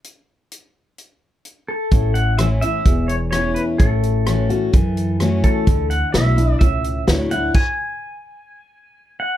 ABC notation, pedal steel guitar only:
X:1
M:4/4
L:1/8
Q:1/4=128
K:A
V:1 name="Pedal steel guitar"
z6 z A- | A f e e2 c c B | A6 z A- | A f e2 e2 z f |
g6- g f |]